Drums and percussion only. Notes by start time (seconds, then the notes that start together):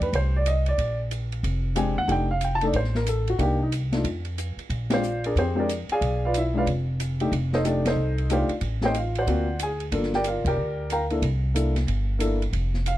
0.01 kick, ride
0.13 kick, ride
0.46 hi-hat pedal, ride
0.66 ride
0.78 kick, ride
1.11 hi-hat pedal, ride
1.32 ride
1.43 kick, ride
1.76 hi-hat pedal, ride
2.08 kick, ride
2.41 hi-hat pedal, ride
2.61 ride
2.73 kick, ride
2.84 snare
2.95 snare
3.06 hi-hat pedal, ride
3.27 ride
3.39 kick, ride
3.72 hi-hat pedal, ride
3.92 snare, ride
4.04 kick, ride
4.25 ride
4.38 hi-hat pedal, ride
4.59 ride
4.70 kick, ride
4.90 snare, ride
5.03 hi-hat pedal
5.24 ride
5.36 kick, ride
5.69 hi-hat pedal, ride
5.89 ride
6.01 kick, ride
6.34 hi-hat pedal, ride
6.66 kick, ride
7.00 hi-hat pedal, ride
7.20 ride
7.32 kick, ride
7.53 snare
7.65 hi-hat pedal, ride
7.85 snare, ride
8.18 ride
8.30 hi-hat pedal, ride
8.49 ride
8.61 kick, ride
8.81 snare
8.94 hi-hat pedal, ride
9.15 ride
9.27 kick, ride
9.59 hi-hat pedal, ride
9.80 ride
9.92 kick, ride
10.03 snare
10.13 snare
10.24 hi-hat pedal, ride
10.45 kick, ride
10.90 hi-hat pedal, ride
11.10 ride
11.22 kick, ride
11.56 hi-hat pedal, ride
11.76 snare, ride
11.87 kick, ride
12.20 hi-hat pedal, ride
12.42 ride
12.53 kick, ride
12.74 snare
12.86 hi-hat pedal, ride